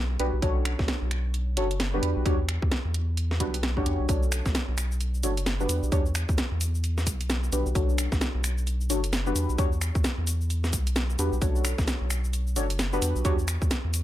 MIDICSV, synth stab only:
0, 0, Header, 1, 2, 480
1, 0, Start_track
1, 0, Key_signature, 2, "minor"
1, 0, Tempo, 458015
1, 445, Time_signature, 4, 2, 24, 8
1, 14708, End_track
2, 0, Start_track
2, 0, Title_t, "Synth stab"
2, 0, Program_c, 0, 62
2, 204, Note_on_c, 0, 62, 82
2, 204, Note_on_c, 0, 67, 76
2, 204, Note_on_c, 0, 71, 93
2, 205, Note_on_c, 0, 66, 78
2, 366, Note_off_c, 0, 62, 0
2, 366, Note_off_c, 0, 66, 0
2, 366, Note_off_c, 0, 67, 0
2, 366, Note_off_c, 0, 71, 0
2, 445, Note_on_c, 0, 62, 75
2, 445, Note_on_c, 0, 66, 69
2, 445, Note_on_c, 0, 69, 69
2, 445, Note_on_c, 0, 73, 87
2, 1622, Note_off_c, 0, 62, 0
2, 1622, Note_off_c, 0, 73, 0
2, 1623, Note_off_c, 0, 66, 0
2, 1623, Note_off_c, 0, 69, 0
2, 1645, Note_on_c, 0, 62, 74
2, 1645, Note_on_c, 0, 66, 70
2, 1645, Note_on_c, 0, 69, 70
2, 1645, Note_on_c, 0, 73, 82
2, 1751, Note_off_c, 0, 62, 0
2, 1751, Note_off_c, 0, 66, 0
2, 1751, Note_off_c, 0, 69, 0
2, 1751, Note_off_c, 0, 73, 0
2, 2031, Note_on_c, 0, 62, 86
2, 2031, Note_on_c, 0, 66, 84
2, 2031, Note_on_c, 0, 71, 99
2, 2032, Note_on_c, 0, 67, 80
2, 2343, Note_off_c, 0, 62, 0
2, 2343, Note_off_c, 0, 66, 0
2, 2343, Note_off_c, 0, 67, 0
2, 2343, Note_off_c, 0, 71, 0
2, 2365, Note_on_c, 0, 62, 96
2, 2365, Note_on_c, 0, 66, 90
2, 2365, Note_on_c, 0, 67, 93
2, 2365, Note_on_c, 0, 73, 105
2, 2471, Note_off_c, 0, 62, 0
2, 2471, Note_off_c, 0, 66, 0
2, 2471, Note_off_c, 0, 67, 0
2, 2471, Note_off_c, 0, 73, 0
2, 3565, Note_on_c, 0, 66, 85
2, 3565, Note_on_c, 0, 67, 77
2, 3566, Note_on_c, 0, 62, 92
2, 3566, Note_on_c, 0, 71, 95
2, 3726, Note_off_c, 0, 62, 0
2, 3726, Note_off_c, 0, 66, 0
2, 3726, Note_off_c, 0, 67, 0
2, 3726, Note_off_c, 0, 71, 0
2, 3950, Note_on_c, 0, 73, 108
2, 3951, Note_on_c, 0, 62, 97
2, 3951, Note_on_c, 0, 66, 95
2, 3951, Note_on_c, 0, 67, 88
2, 4262, Note_off_c, 0, 66, 0
2, 4262, Note_off_c, 0, 67, 0
2, 4262, Note_off_c, 0, 73, 0
2, 4263, Note_off_c, 0, 62, 0
2, 4285, Note_on_c, 0, 62, 78
2, 4285, Note_on_c, 0, 66, 68
2, 4285, Note_on_c, 0, 69, 71
2, 4285, Note_on_c, 0, 73, 88
2, 5462, Note_off_c, 0, 62, 0
2, 5462, Note_off_c, 0, 66, 0
2, 5462, Note_off_c, 0, 69, 0
2, 5463, Note_off_c, 0, 73, 0
2, 5486, Note_on_c, 0, 62, 76
2, 5486, Note_on_c, 0, 66, 69
2, 5486, Note_on_c, 0, 73, 88
2, 5487, Note_on_c, 0, 69, 71
2, 5591, Note_off_c, 0, 73, 0
2, 5592, Note_off_c, 0, 62, 0
2, 5592, Note_off_c, 0, 66, 0
2, 5592, Note_off_c, 0, 69, 0
2, 5871, Note_on_c, 0, 71, 95
2, 5872, Note_on_c, 0, 62, 88
2, 5872, Note_on_c, 0, 66, 78
2, 5872, Note_on_c, 0, 67, 77
2, 6183, Note_off_c, 0, 62, 0
2, 6183, Note_off_c, 0, 66, 0
2, 6183, Note_off_c, 0, 67, 0
2, 6183, Note_off_c, 0, 71, 0
2, 6205, Note_on_c, 0, 73, 116
2, 6206, Note_on_c, 0, 62, 102
2, 6206, Note_on_c, 0, 66, 88
2, 6206, Note_on_c, 0, 67, 90
2, 6311, Note_off_c, 0, 62, 0
2, 6311, Note_off_c, 0, 66, 0
2, 6311, Note_off_c, 0, 67, 0
2, 6311, Note_off_c, 0, 73, 0
2, 7886, Note_on_c, 0, 66, 76
2, 7886, Note_on_c, 0, 67, 75
2, 7886, Note_on_c, 0, 71, 93
2, 7887, Note_on_c, 0, 62, 85
2, 8046, Note_off_c, 0, 71, 0
2, 8047, Note_off_c, 0, 62, 0
2, 8047, Note_off_c, 0, 66, 0
2, 8047, Note_off_c, 0, 67, 0
2, 8125, Note_on_c, 0, 62, 76
2, 8125, Note_on_c, 0, 73, 83
2, 8126, Note_on_c, 0, 66, 70
2, 8126, Note_on_c, 0, 69, 69
2, 9302, Note_off_c, 0, 73, 0
2, 9303, Note_off_c, 0, 62, 0
2, 9303, Note_off_c, 0, 66, 0
2, 9303, Note_off_c, 0, 69, 0
2, 9324, Note_on_c, 0, 66, 69
2, 9325, Note_on_c, 0, 62, 79
2, 9325, Note_on_c, 0, 69, 68
2, 9325, Note_on_c, 0, 73, 84
2, 9431, Note_off_c, 0, 62, 0
2, 9431, Note_off_c, 0, 66, 0
2, 9431, Note_off_c, 0, 69, 0
2, 9431, Note_off_c, 0, 73, 0
2, 9710, Note_on_c, 0, 66, 84
2, 9710, Note_on_c, 0, 67, 82
2, 9710, Note_on_c, 0, 71, 99
2, 9711, Note_on_c, 0, 62, 87
2, 10022, Note_off_c, 0, 62, 0
2, 10022, Note_off_c, 0, 66, 0
2, 10022, Note_off_c, 0, 67, 0
2, 10022, Note_off_c, 0, 71, 0
2, 10044, Note_on_c, 0, 66, 92
2, 10045, Note_on_c, 0, 62, 99
2, 10045, Note_on_c, 0, 67, 89
2, 10045, Note_on_c, 0, 73, 108
2, 10151, Note_off_c, 0, 62, 0
2, 10151, Note_off_c, 0, 66, 0
2, 10151, Note_off_c, 0, 67, 0
2, 10151, Note_off_c, 0, 73, 0
2, 11725, Note_on_c, 0, 66, 76
2, 11725, Note_on_c, 0, 67, 76
2, 11726, Note_on_c, 0, 62, 81
2, 11726, Note_on_c, 0, 71, 93
2, 11886, Note_off_c, 0, 62, 0
2, 11886, Note_off_c, 0, 66, 0
2, 11886, Note_off_c, 0, 67, 0
2, 11886, Note_off_c, 0, 71, 0
2, 11965, Note_on_c, 0, 62, 74
2, 11965, Note_on_c, 0, 69, 70
2, 11965, Note_on_c, 0, 73, 81
2, 11966, Note_on_c, 0, 66, 67
2, 13142, Note_off_c, 0, 62, 0
2, 13142, Note_off_c, 0, 73, 0
2, 13143, Note_off_c, 0, 66, 0
2, 13143, Note_off_c, 0, 69, 0
2, 13165, Note_on_c, 0, 69, 70
2, 13165, Note_on_c, 0, 73, 81
2, 13166, Note_on_c, 0, 62, 78
2, 13166, Note_on_c, 0, 66, 71
2, 13271, Note_off_c, 0, 62, 0
2, 13271, Note_off_c, 0, 66, 0
2, 13271, Note_off_c, 0, 69, 0
2, 13271, Note_off_c, 0, 73, 0
2, 13551, Note_on_c, 0, 62, 88
2, 13551, Note_on_c, 0, 66, 82
2, 13551, Note_on_c, 0, 67, 79
2, 13552, Note_on_c, 0, 71, 96
2, 13863, Note_off_c, 0, 62, 0
2, 13863, Note_off_c, 0, 66, 0
2, 13863, Note_off_c, 0, 67, 0
2, 13863, Note_off_c, 0, 71, 0
2, 13886, Note_on_c, 0, 62, 98
2, 13886, Note_on_c, 0, 66, 90
2, 13886, Note_on_c, 0, 67, 92
2, 13886, Note_on_c, 0, 73, 104
2, 13991, Note_off_c, 0, 62, 0
2, 13991, Note_off_c, 0, 66, 0
2, 13991, Note_off_c, 0, 67, 0
2, 13991, Note_off_c, 0, 73, 0
2, 14708, End_track
0, 0, End_of_file